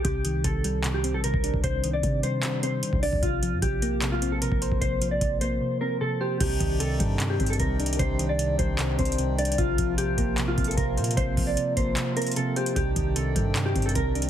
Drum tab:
CC |------------------------------------------------------------------------------------------------|------------------------------------------------------------------------------------------------|------------------------------------------------------------------------------------------------|------------------------------------------------------------------------------------------------|
HH |x-----------x-----------x-----------x-----------x-----------x-----------x-----------x-----------|x-----------x-----------x-----------x-----------x-----------x-----------x-----------o-----------|x-----------x-----------x-----------x-----------x-----------x-----------x-----------x-----------|x-----------x-----------x-----------x-----------------------------------------------------------|
CP |------------------------------------------------x-----------------------------------------------|------------------------------------------------x-----------------------------------------------|------------------------------------------------x-----------------------------------------------|------------------------------------------------------------------------------------------------|
BD |o-----------------------o-----------------------------------------------------o-----------o-----|o-----------------------o-----------------------------------------------------o-----------o-----|o-----------------------o-----------------------------------------------------o-----------o-----|o-----------------------o-----------------------------------------------------------------------|

CC |x-----------------------------------------------------------------------------------------------|------------------------------------------------------------------------------------------------|------------------------------------------------------------------------------------------------|------------------------------------------------------------------------------------------------|
HH |x-----------x-----------x-----------x-----------x-----------x---x---x---x-----------x---x---x---|x-----------x-----------x-----------x-----------x-----------x---x---x---x-----------x---x---x---|x-----------x-----------x-----------x-----------x-----------x---x---x---x-----------x---x---x---|x-----------o-----------x-----------x-----------x-----------x--x--x--x--x-----------x-----x-----|
CP |------------------------------------------------x-----------------------------------------------|------------------------------------------------x-----------------------------------------------|------------------------------------------------x-----------------------------------------------|------------------------------------------------x-----------------------------------------------|
BD |o-----------o-----------------------o-----------------------o-----------o-----------------------|o-----------------------------------o-----------------------o-----------------------------------|o-----------o-----------------------o-----------------------o-----------o-----------------------|o-----------o-----------------------o-----------------------------------------------------------|

CC |------------------------------------------------------------------------------------------------|
HH |x-----------x-----------x-----------x-----------x-----------x---x---x---x-----------x---x-------|
CP |------------------------------------------------x-----------------------------------------------|
BD |o-----------o-----------------------o-----------------------o-----------o-----------------------|